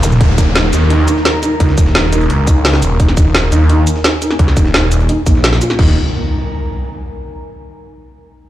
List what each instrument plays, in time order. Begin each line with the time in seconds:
Already playing: detuned saw bass D#1, ambient pad D#3 A#3 A#4 F5, analog synth pad D#4 A#4 C#6
0.03 closed hi-hat, zap, shaker
0.12 mid tom, shaker
0.21 detuned saw bass D#1, analog synth pad D#4, kick, closed hi-hat, downlifter
0.38 felt piano D#4, kick, closed hi-hat, shaker
0.43 analog synth pad A#4
0.55 felt piano D#4, snare, closed hi-hat
0.64 snare
0.71 detuned saw bass D#2, analog synth pad A#5, closed hi-hat, shaker
0.90 felt piano D#4, closed hi-hat
1.08 felt piano D#4, closed hi-hat, shaker
1.17 snare
1.25 snare, closed hi-hat
1.43 felt piano D#4, closed hi-hat, shaker
1.60 detuned saw bass C#2, felt piano D#4, kick, closed hi-hat
1.69 snare
1.78 detuned saw bass D#1, kick, closed hi-hat, shaker
1.86 snare
1.95 detuned saw bass D#1, felt piano D#4, snare, closed hi-hat
2.04 snare
2.12 felt piano D#4, closed hi-hat, shaker
2.21 closed hi-hat
2.30 detuned saw bass C#2, closed hi-hat
2.47 felt piano D#4, kick, closed hi-hat, shaker
2.65 felt piano D#4, snare, closed hi-hat, open hi-hat
2.73 snare
2.82 detuned saw bass D#1, closed hi-hat, shaker
3.00 detuned saw bass D#1, felt piano D#4, kick, closed hi-hat
3.08 snare
3.17 felt piano D#4, kick, closed hi-hat, shaker
3.35 snare, closed hi-hat
3.43 snare
3.52 detuned saw bass D#2, felt piano D#4, closed hi-hat, shaker
3.60 analog synth pad G#5
3.69 felt piano D#4, closed hi-hat
3.87 closed hi-hat, shaker
3.96 snare
4.04 felt piano D#4, snare, closed hi-hat
4.22 felt piano D#4, closed hi-hat, shaker
4.31 snare
4.39 detuned saw bass C#2, kick, closed hi-hat
4.48 snare
4.57 detuned saw bass D#1, felt piano D#4, kick, closed hi-hat, shaker
4.65 snare
4.74 detuned saw bass D#1, felt piano D#4, snare, closed hi-hat
4.83 snare
4.92 closed hi-hat, shaker
5.00 closed hi-hat
5.09 felt piano D#4, closed hi-hat
5.26 detuned saw bass A#1, felt piano D#4, kick, closed hi-hat, shaker
5.35 snare
5.44 snare, closed hi-hat, open hi-hat
5.53 snare
5.61 felt piano F4, closed hi-hat, shaker
5.70 snare
5.79 detuned saw bass D#1, felt piano D#4, analog synth pad D#4, kick, crash, impact
5.84 analog synth pad A#4
5.89 analog synth pad A#5